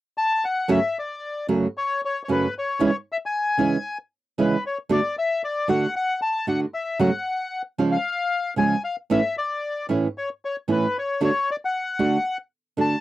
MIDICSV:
0, 0, Header, 1, 3, 480
1, 0, Start_track
1, 0, Key_signature, 3, "minor"
1, 0, Tempo, 525394
1, 639, Time_signature, 4, 2, 24, 8
1, 11882, End_track
2, 0, Start_track
2, 0, Title_t, "Bandoneon"
2, 0, Program_c, 0, 23
2, 161, Note_on_c, 0, 81, 76
2, 407, Note_off_c, 0, 81, 0
2, 409, Note_on_c, 0, 78, 60
2, 650, Note_on_c, 0, 76, 69
2, 651, Note_off_c, 0, 78, 0
2, 892, Note_off_c, 0, 76, 0
2, 904, Note_on_c, 0, 74, 55
2, 1341, Note_off_c, 0, 74, 0
2, 1622, Note_on_c, 0, 73, 66
2, 1837, Note_off_c, 0, 73, 0
2, 1874, Note_on_c, 0, 73, 61
2, 2028, Note_off_c, 0, 73, 0
2, 2050, Note_on_c, 0, 73, 47
2, 2097, Note_off_c, 0, 73, 0
2, 2115, Note_on_c, 0, 71, 59
2, 2325, Note_off_c, 0, 71, 0
2, 2361, Note_on_c, 0, 73, 62
2, 2590, Note_off_c, 0, 73, 0
2, 2613, Note_on_c, 0, 73, 71
2, 2710, Note_off_c, 0, 73, 0
2, 2853, Note_on_c, 0, 76, 74
2, 2896, Note_off_c, 0, 76, 0
2, 2976, Note_on_c, 0, 80, 75
2, 3634, Note_off_c, 0, 80, 0
2, 4025, Note_on_c, 0, 71, 58
2, 4238, Note_off_c, 0, 71, 0
2, 4261, Note_on_c, 0, 73, 57
2, 4365, Note_off_c, 0, 73, 0
2, 4495, Note_on_c, 0, 74, 76
2, 4712, Note_off_c, 0, 74, 0
2, 4737, Note_on_c, 0, 76, 75
2, 4952, Note_off_c, 0, 76, 0
2, 4973, Note_on_c, 0, 74, 69
2, 5190, Note_off_c, 0, 74, 0
2, 5207, Note_on_c, 0, 78, 79
2, 5432, Note_off_c, 0, 78, 0
2, 5445, Note_on_c, 0, 78, 82
2, 5665, Note_off_c, 0, 78, 0
2, 5683, Note_on_c, 0, 81, 72
2, 5904, Note_off_c, 0, 81, 0
2, 5924, Note_on_c, 0, 78, 71
2, 6031, Note_off_c, 0, 78, 0
2, 6159, Note_on_c, 0, 76, 62
2, 6381, Note_off_c, 0, 76, 0
2, 6397, Note_on_c, 0, 78, 69
2, 6961, Note_off_c, 0, 78, 0
2, 7235, Note_on_c, 0, 77, 73
2, 7801, Note_off_c, 0, 77, 0
2, 7839, Note_on_c, 0, 80, 70
2, 8062, Note_off_c, 0, 80, 0
2, 8078, Note_on_c, 0, 77, 60
2, 8187, Note_off_c, 0, 77, 0
2, 8330, Note_on_c, 0, 76, 71
2, 8549, Note_off_c, 0, 76, 0
2, 8567, Note_on_c, 0, 74, 60
2, 9011, Note_off_c, 0, 74, 0
2, 9299, Note_on_c, 0, 73, 64
2, 9403, Note_off_c, 0, 73, 0
2, 9547, Note_on_c, 0, 73, 65
2, 9649, Note_off_c, 0, 73, 0
2, 9792, Note_on_c, 0, 71, 58
2, 10024, Note_off_c, 0, 71, 0
2, 10037, Note_on_c, 0, 73, 58
2, 10244, Note_off_c, 0, 73, 0
2, 10274, Note_on_c, 0, 73, 75
2, 10505, Note_off_c, 0, 73, 0
2, 10518, Note_on_c, 0, 74, 66
2, 10564, Note_off_c, 0, 74, 0
2, 10643, Note_on_c, 0, 78, 75
2, 11305, Note_off_c, 0, 78, 0
2, 11702, Note_on_c, 0, 81, 76
2, 11882, Note_off_c, 0, 81, 0
2, 11882, End_track
3, 0, Start_track
3, 0, Title_t, "Nylon-string guitar"
3, 0, Program_c, 1, 24
3, 623, Note_on_c, 1, 42, 66
3, 628, Note_on_c, 1, 49, 67
3, 629, Note_on_c, 1, 54, 64
3, 630, Note_on_c, 1, 57, 64
3, 633, Note_on_c, 1, 61, 69
3, 633, Note_on_c, 1, 66, 70
3, 713, Note_off_c, 1, 42, 0
3, 716, Note_off_c, 1, 49, 0
3, 716, Note_off_c, 1, 54, 0
3, 717, Note_off_c, 1, 57, 0
3, 718, Note_off_c, 1, 61, 0
3, 718, Note_off_c, 1, 66, 0
3, 1357, Note_on_c, 1, 42, 50
3, 1357, Note_on_c, 1, 49, 47
3, 1360, Note_on_c, 1, 54, 51
3, 1360, Note_on_c, 1, 57, 50
3, 1360, Note_on_c, 1, 61, 55
3, 1364, Note_on_c, 1, 66, 54
3, 1515, Note_off_c, 1, 42, 0
3, 1515, Note_off_c, 1, 49, 0
3, 1516, Note_off_c, 1, 54, 0
3, 1516, Note_off_c, 1, 61, 0
3, 1517, Note_off_c, 1, 57, 0
3, 1518, Note_off_c, 1, 66, 0
3, 2085, Note_on_c, 1, 42, 45
3, 2089, Note_on_c, 1, 49, 46
3, 2093, Note_on_c, 1, 54, 51
3, 2095, Note_on_c, 1, 57, 55
3, 2095, Note_on_c, 1, 61, 52
3, 2098, Note_on_c, 1, 66, 53
3, 2240, Note_off_c, 1, 42, 0
3, 2242, Note_off_c, 1, 49, 0
3, 2244, Note_off_c, 1, 54, 0
3, 2245, Note_off_c, 1, 57, 0
3, 2245, Note_off_c, 1, 61, 0
3, 2246, Note_off_c, 1, 66, 0
3, 2552, Note_on_c, 1, 49, 66
3, 2561, Note_on_c, 1, 52, 61
3, 2562, Note_on_c, 1, 56, 72
3, 2564, Note_on_c, 1, 61, 71
3, 2566, Note_on_c, 1, 64, 68
3, 2641, Note_off_c, 1, 49, 0
3, 2645, Note_off_c, 1, 52, 0
3, 2646, Note_off_c, 1, 56, 0
3, 2647, Note_off_c, 1, 61, 0
3, 2647, Note_off_c, 1, 64, 0
3, 3266, Note_on_c, 1, 49, 49
3, 3273, Note_on_c, 1, 52, 54
3, 3276, Note_on_c, 1, 61, 58
3, 3279, Note_on_c, 1, 56, 51
3, 3283, Note_on_c, 1, 64, 55
3, 3431, Note_off_c, 1, 49, 0
3, 3434, Note_off_c, 1, 52, 0
3, 3435, Note_off_c, 1, 61, 0
3, 3437, Note_off_c, 1, 56, 0
3, 3439, Note_off_c, 1, 64, 0
3, 4002, Note_on_c, 1, 49, 48
3, 4004, Note_on_c, 1, 56, 55
3, 4007, Note_on_c, 1, 52, 56
3, 4009, Note_on_c, 1, 61, 55
3, 4012, Note_on_c, 1, 64, 56
3, 4158, Note_off_c, 1, 49, 0
3, 4159, Note_off_c, 1, 56, 0
3, 4160, Note_off_c, 1, 52, 0
3, 4161, Note_off_c, 1, 61, 0
3, 4163, Note_off_c, 1, 64, 0
3, 4471, Note_on_c, 1, 50, 72
3, 4476, Note_on_c, 1, 57, 68
3, 4482, Note_on_c, 1, 62, 76
3, 4482, Note_on_c, 1, 66, 77
3, 4559, Note_off_c, 1, 50, 0
3, 4561, Note_off_c, 1, 57, 0
3, 4564, Note_off_c, 1, 62, 0
3, 4565, Note_off_c, 1, 66, 0
3, 5189, Note_on_c, 1, 50, 55
3, 5194, Note_on_c, 1, 62, 56
3, 5195, Note_on_c, 1, 57, 52
3, 5199, Note_on_c, 1, 66, 62
3, 5349, Note_off_c, 1, 50, 0
3, 5352, Note_off_c, 1, 57, 0
3, 5352, Note_off_c, 1, 62, 0
3, 5354, Note_off_c, 1, 66, 0
3, 5911, Note_on_c, 1, 57, 50
3, 5912, Note_on_c, 1, 50, 51
3, 5917, Note_on_c, 1, 62, 46
3, 5919, Note_on_c, 1, 66, 54
3, 6069, Note_off_c, 1, 57, 0
3, 6070, Note_off_c, 1, 50, 0
3, 6073, Note_off_c, 1, 62, 0
3, 6074, Note_off_c, 1, 66, 0
3, 6390, Note_on_c, 1, 49, 73
3, 6391, Note_on_c, 1, 54, 68
3, 6399, Note_on_c, 1, 57, 65
3, 6400, Note_on_c, 1, 61, 70
3, 6403, Note_on_c, 1, 66, 75
3, 6476, Note_off_c, 1, 49, 0
3, 6476, Note_off_c, 1, 54, 0
3, 6480, Note_off_c, 1, 57, 0
3, 6481, Note_off_c, 1, 61, 0
3, 6482, Note_off_c, 1, 66, 0
3, 7111, Note_on_c, 1, 49, 45
3, 7112, Note_on_c, 1, 53, 58
3, 7118, Note_on_c, 1, 56, 49
3, 7118, Note_on_c, 1, 61, 54
3, 7122, Note_on_c, 1, 65, 58
3, 7269, Note_off_c, 1, 49, 0
3, 7270, Note_off_c, 1, 53, 0
3, 7273, Note_off_c, 1, 56, 0
3, 7273, Note_off_c, 1, 61, 0
3, 7275, Note_off_c, 1, 65, 0
3, 7823, Note_on_c, 1, 49, 49
3, 7831, Note_on_c, 1, 56, 49
3, 7832, Note_on_c, 1, 53, 46
3, 7835, Note_on_c, 1, 61, 48
3, 7839, Note_on_c, 1, 65, 51
3, 7986, Note_off_c, 1, 49, 0
3, 7990, Note_off_c, 1, 56, 0
3, 7991, Note_off_c, 1, 53, 0
3, 7992, Note_off_c, 1, 61, 0
3, 7994, Note_off_c, 1, 65, 0
3, 8312, Note_on_c, 1, 45, 69
3, 8321, Note_on_c, 1, 52, 66
3, 8321, Note_on_c, 1, 61, 68
3, 8324, Note_on_c, 1, 57, 67
3, 8326, Note_on_c, 1, 64, 71
3, 8399, Note_off_c, 1, 45, 0
3, 8403, Note_off_c, 1, 52, 0
3, 8403, Note_off_c, 1, 61, 0
3, 8404, Note_off_c, 1, 57, 0
3, 8405, Note_off_c, 1, 64, 0
3, 9032, Note_on_c, 1, 45, 52
3, 9034, Note_on_c, 1, 52, 52
3, 9038, Note_on_c, 1, 57, 50
3, 9039, Note_on_c, 1, 61, 51
3, 9048, Note_on_c, 1, 64, 54
3, 9192, Note_off_c, 1, 45, 0
3, 9193, Note_off_c, 1, 52, 0
3, 9195, Note_off_c, 1, 57, 0
3, 9195, Note_off_c, 1, 61, 0
3, 9200, Note_off_c, 1, 64, 0
3, 9755, Note_on_c, 1, 45, 45
3, 9758, Note_on_c, 1, 52, 48
3, 9759, Note_on_c, 1, 57, 50
3, 9762, Note_on_c, 1, 61, 58
3, 9765, Note_on_c, 1, 64, 49
3, 9914, Note_off_c, 1, 45, 0
3, 9915, Note_off_c, 1, 52, 0
3, 9916, Note_off_c, 1, 57, 0
3, 9917, Note_off_c, 1, 61, 0
3, 9919, Note_off_c, 1, 64, 0
3, 10239, Note_on_c, 1, 50, 69
3, 10241, Note_on_c, 1, 57, 69
3, 10244, Note_on_c, 1, 62, 70
3, 10252, Note_on_c, 1, 66, 74
3, 10322, Note_off_c, 1, 50, 0
3, 10324, Note_off_c, 1, 57, 0
3, 10325, Note_off_c, 1, 62, 0
3, 10329, Note_off_c, 1, 66, 0
3, 10955, Note_on_c, 1, 57, 58
3, 10956, Note_on_c, 1, 50, 55
3, 10959, Note_on_c, 1, 62, 57
3, 10961, Note_on_c, 1, 66, 52
3, 11113, Note_off_c, 1, 50, 0
3, 11113, Note_off_c, 1, 57, 0
3, 11115, Note_off_c, 1, 62, 0
3, 11116, Note_off_c, 1, 66, 0
3, 11667, Note_on_c, 1, 50, 51
3, 11673, Note_on_c, 1, 57, 50
3, 11676, Note_on_c, 1, 62, 55
3, 11677, Note_on_c, 1, 66, 56
3, 11827, Note_off_c, 1, 50, 0
3, 11830, Note_off_c, 1, 57, 0
3, 11832, Note_off_c, 1, 62, 0
3, 11833, Note_off_c, 1, 66, 0
3, 11882, End_track
0, 0, End_of_file